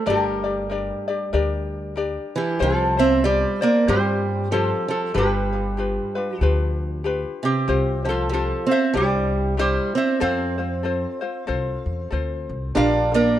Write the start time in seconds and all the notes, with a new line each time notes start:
0.06 G1 G3 D4 G4 A#4 D5
0.10 G4 A#4
0.44 D4 G4 D5
0.69 D4 G4 A#4 D5
1.08 D4 G4 D5
1.33 D2 D4 G4 A#4 D5
1.96 D4 G4 A#4 D5
2.36 E3 E4 G4
2.59 C2 F3 C4 F4 G4 A4 C5
2.97 C4 F4 C5 E5
3.24 G3 C4 F4 G4 C5 D5
3.61 A#3 C4 F4 A#4 C5 D5
3.88 G2 G3 C4 F4 G4 C5
4.51 F3 C4 F4 G4 A4 C5
4.88 F3 F4 A4
5.14 G1 G3 D4 F4 G4 B4
5.18 G4
5.53 D4 F4 B4
5.77 D4 F4 G4 B4
6.15 D4 F4 B4
6.37 F3 A4
6.41 D2 D4 F4 G4 B4
7.04 D4 F4 G4 B4
7.43 C3 C4 G4
7.68 C2 C4 F4 G4 C5
8.05 F3 C4 F4 C5
8.09 F4 A4
8.29 F3 C4 F4 G4 C5
8.34 F4 A4
8.67 C4 F4 C5
8.71 C4 C5 E5
8.94 C2 G3 D4 E4 G4 C5 D5
9.57 G3 D4 E4 G4 C5
9.95 C4 C5 E5
10.20 F2 C4 F4 A4 C5 F5
10.58 C4 F4 C5
10.83 C4 F4 A4 C5
11.21 C4 F4 C5
11.47 C2 C4 F4 A4 C5
11.86 E2
12.11 D2 C4 F4 A4 C5
12.49 C2
12.75 A#1 D4 F4 G4 A#4 D5 F5
13.12 A#3 D4 F4 A#4 D5
13.16 A#4